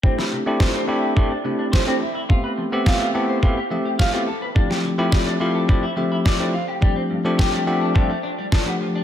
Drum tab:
SD |-o--o-------o---|----o-------o---|-o--o-------o---|----o-------o---|
BD |o---o---o---o---|o---o---o---o---|o---o---o---o---|o---o---o---o---|